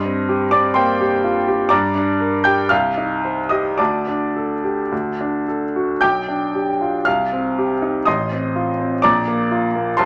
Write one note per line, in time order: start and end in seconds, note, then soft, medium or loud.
0.00 1.67 G2 medium
0.00 0.49 D#5 medium
0.00 0.49 C6 medium
0.00 0.52 D#6 medium
0.05 0.44 C4 soft
0.29 0.68 G4 medium
0.51 0.91 C4 soft
0.51 0.75 D5 medium
0.51 0.76 D6 medium
0.74 1.00 A#3 soft
0.74 1.66 C5 medium
0.74 1.66 G5 medium
0.74 1.69 C6 medium
1.01 1.38 G4 medium
1.24 1.47 F4 soft
1.48 1.71 G4 medium
1.69 2.68 G2 medium
1.69 2.40 D5 medium
1.69 2.40 A#5 medium
1.69 2.44 D6 medium
1.95 2.35 D4 soft
2.20 2.61 A#4 soft
2.44 2.72 G4 soft
2.44 2.69 G5 medium
2.44 2.70 G6 medium
2.69 3.76 C2 medium
2.69 3.47 F5 medium
2.69 3.50 F6 medium
2.98 3.40 D#4 soft
3.25 3.68 C5 soft
3.49 3.79 G4 soft
3.49 3.77 D#5 medium
3.49 3.78 D#6 medium
3.78 4.88 D2 soft
3.78 5.43 D5 soft
3.78 5.43 A5 soft
3.78 5.47 D6 medium
4.08 4.53 D4 soft
4.36 4.81 A4 soft
4.64 4.92 G4 soft
4.92 5.99 D2 soft
5.21 5.65 D4 soft
5.48 5.91 A4 soft
5.76 6.02 F#4 soft
6.01 7.03 B1 soft
6.01 7.01 G5 medium
6.01 7.02 D6 medium
6.01 7.05 G6 medium
6.29 6.70 D4 soft
6.55 6.96 G4 soft
6.81 7.06 F4 soft
7.05 8.04 C2 soft
7.05 8.03 F5 medium
7.05 8.06 F6 medium
7.33 7.72 C4 soft
7.58 7.97 G4 soft
7.82 8.07 D#4 soft
8.05 9.01 A1 medium
8.05 9.00 D#5 medium
8.05 9.00 C6 medium
8.05 9.03 D#6 medium
8.32 8.70 C4 soft
8.56 8.94 F4 soft
8.80 9.04 C4 soft
9.02 9.96 A#1 medium
9.02 9.94 D5 medium
9.02 9.94 A#5 medium
9.02 9.98 D6 medium
9.28 9.65 A#3 soft
9.51 9.89 F4 soft
9.75 9.99 A#3 soft
9.97 10.05 C2 medium
9.97 10.05 C5 medium
9.97 10.05 A5 medium
9.97 10.05 C6 medium